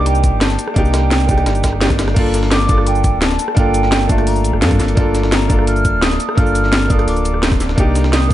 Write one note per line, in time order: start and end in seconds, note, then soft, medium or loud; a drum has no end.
0.00 0.34 C2 loud
0.00 0.74 A#3 loud
0.00 0.75 D4 medium
0.00 0.77 D#4 medium
0.00 0.78 G4 loud
0.06 0.41 G5 loud
0.06 closed hi-hat medium
0.06 closed hi-hat loud
0.15 closed hi-hat soft
0.15 shaker soft
0.24 kick medium
0.24 closed hi-hat medium
0.24 shaker medium
0.33 0.57 G1 medium
0.41 0.70 A5 loud
0.41 snare loud
0.41 closed hi-hat medium
0.50 snare medium
0.50 closed hi-hat soft
0.50 shaker soft
0.59 closed hi-hat medium
0.59 shaker medium
0.68 0.78 A5 medium
0.68 cross-stick medium
0.74 1.48 C2 loud
0.74 1.25 A#3 medium
0.74 1.26 D4 medium
0.74 1.27 D#4 medium
0.74 1.99 G5 medium
0.74 kick loud
0.74 closed hi-hat loud
0.74 closed hi-hat medium
0.78 1.28 G4 loud
0.85 shaker soft
0.94 snare loud
0.94 closed hi-hat medium
0.94 shaker medium
1.11 snare loud
1.11 closed hi-hat medium
1.11 closed hi-hat loud
1.20 closed hi-hat soft
1.20 shaker soft
1.27 1.79 A#3 medium
1.27 1.79 D4 medium
1.27 1.80 D#4 medium
1.27 kick loud
1.27 closed hi-hat medium
1.27 shaker medium
1.31 1.81 G4 medium
1.38 cross-stick soft
1.38 closed hi-hat soft
1.46 2.15 G1 loud
1.46 snare loud
1.46 closed hi-hat loud
1.46 closed hi-hat medium
1.55 closed hi-hat soft
1.55 shaker soft
1.64 kick medium
1.64 snare loud
1.64 closed hi-hat medium
1.64 shaker medium
1.73 cross-stick soft
1.81 2.13 A#3 medium
1.81 2.14 D4 medium
1.81 2.15 D#4 medium
1.81 2.15 G4 medium
1.81 snare loud
1.81 closed hi-hat medium
1.90 kick medium
1.90 cross-stick soft
1.90 snare soft
1.90 closed hi-hat soft
1.90 shaker soft
1.99 snare loud
1.99 snare soft
1.99 closed hi-hat medium
1.99 shaker medium
2.08 cross-stick medium
2.08 snare soft
2.14 3.15 G1 loud
2.14 2.65 A#3 medium
2.14 2.67 D4 medium
2.14 2.67 F4 medium
2.14 kick loud
2.14 closed hi-hat loud
2.14 closed hi-hat medium
2.14 crash medium
2.19 2.68 A4 loud
2.34 snare soft
2.34 closed hi-hat medium
2.34 shaker medium
2.43 snare soft
2.51 2.88 D6 loud
2.51 snare loud
2.51 closed hi-hat loud
2.51 closed hi-hat medium
2.60 shaker soft
2.67 3.53 A#3 medium
2.67 3.54 D4 medium
2.67 3.55 F4 medium
2.67 kick loud
2.67 closed hi-hat medium
2.67 shaker medium
2.71 3.56 A4 medium
2.78 cross-stick soft
2.87 3.21 G5 medium
2.87 closed hi-hat loud
2.87 closed hi-hat medium
2.95 closed hi-hat soft
2.95 shaker soft
3.04 kick medium
3.04 closed hi-hat medium
3.04 shaker medium
3.13 3.38 D1 medium
3.22 3.58 A5 loud
3.22 snare loud
3.22 closed hi-hat medium
3.30 snare medium
3.30 closed hi-hat soft
3.30 shaker soft
3.39 closed hi-hat medium
3.39 shaker medium
3.48 cross-stick medium
3.55 4.46 G1 loud
3.55 4.06 A#3 medium
3.55 4.07 D4 medium
3.55 4.08 F4 medium
3.55 4.11 G5 loud
3.55 kick loud
3.55 closed hi-hat medium
3.59 4.08 A4 loud
3.74 closed hi-hat medium
3.74 shaker medium
3.83 snare soft
3.92 snare loud
3.92 closed hi-hat medium
4.01 shaker soft
4.07 4.59 A#3 medium
4.07 4.60 D4 medium
4.07 4.61 F4 medium
4.07 4.29 A5 medium
4.07 kick loud
4.07 closed hi-hat medium
4.07 shaker medium
4.12 4.61 A3 medium
4.18 cross-stick soft
4.18 closed hi-hat soft
4.27 4.62 A#5 medium
4.27 closed hi-hat medium
4.27 open hi-hat medium
4.36 closed hi-hat soft
4.36 shaker soft
4.44 4.52 A1 medium
4.44 closed hi-hat medium
4.44 shaker medium
4.53 4.64 G1 medium
4.53 cross-stick soft
4.61 4.81 G2 loud
4.61 4.94 A#3 medium
4.61 4.95 D4 medium
4.61 4.95 F4 medium
4.61 4.96 A4 medium
4.61 snare loud
4.61 closed hi-hat medium
4.71 kick medium
4.71 cross-stick soft
4.71 closed hi-hat soft
4.71 shaker soft
4.80 4.95 G1 medium
4.80 snare soft
4.80 closed hi-hat medium
4.80 shaker medium
4.88 closed hi-hat medium
4.95 5.95 G1 loud
4.95 5.46 A#3 loud
4.95 5.47 D4 medium
4.95 5.48 F4 medium
4.95 kick loud
4.95 closed hi-hat medium
4.99 5.49 A4 loud
5.15 snare soft
5.15 closed hi-hat medium
5.15 shaker medium
5.23 snare medium
5.32 5.65 A#5 medium
5.32 snare loud
5.32 closed hi-hat medium
5.41 shaker soft
5.48 6.34 A#3 medium
5.48 6.35 D4 medium
5.48 6.36 F4 medium
5.48 kick loud
5.48 closed hi-hat medium
5.48 shaker medium
5.52 6.37 A4 medium
5.59 cross-stick soft
5.67 6.04 F6 loud
5.67 closed hi-hat medium
5.76 closed hi-hat soft
5.76 shaker soft
5.85 kick medium
5.85 closed hi-hat medium
5.85 shaker medium
5.94 6.19 D1 medium
6.02 6.39 D#6 loud
6.02 snare loud
6.02 closed hi-hat medium
6.11 snare medium
6.11 closed hi-hat soft
6.11 shaker soft
6.20 closed hi-hat medium
6.20 shaker medium
6.29 cross-stick medium
6.35 7.07 G1 loud
6.35 6.86 A#3 medium
6.35 6.88 D4 medium
6.35 6.88 F4 medium
6.35 6.92 F6 loud
6.35 kick loud
6.35 closed hi-hat medium
6.40 6.89 A4 loud
6.46 shaker soft
6.55 closed hi-hat medium
6.55 shaker medium
6.64 snare soft
6.73 snare loud
6.73 closed hi-hat medium
6.81 shaker soft
6.88 7.40 A#3 medium
6.88 7.41 D4 medium
6.88 7.41 F4 medium
6.88 7.07 D#6 loud
6.88 kick loud
6.88 closed hi-hat medium
6.88 shaker medium
6.92 7.42 A4 medium
6.99 cross-stick soft
6.99 closed hi-hat soft
7.08 7.76 D1 loud
7.08 7.41 D6 medium
7.08 closed hi-hat medium
7.08 open hi-hat medium
7.17 closed hi-hat soft
7.17 shaker soft
7.25 closed hi-hat medium
7.25 shaker medium
7.34 cross-stick soft
7.43 snare loud
7.43 closed hi-hat medium
7.51 kick medium
7.51 cross-stick soft
7.51 snare soft
7.51 closed hi-hat soft
7.51 shaker soft
7.60 snare soft
7.60 closed hi-hat medium
7.60 shaker medium
7.69 snare soft
7.76 8.34 C2 loud
7.76 8.27 A#3 loud
7.76 8.28 D4 medium
7.76 8.29 D#4 medium
7.76 kick loud
7.76 closed hi-hat medium
7.80 8.29 G4 loud
7.95 snare soft
7.95 closed hi-hat medium
7.95 shaker medium
8.04 snare medium
8.13 8.34 D#6 loud
8.13 snare loud
8.13 closed hi-hat medium
8.22 shaker soft
8.28 8.34 A#3 medium
8.28 8.34 D4 medium
8.28 kick loud
8.28 closed hi-hat medium
8.28 shaker medium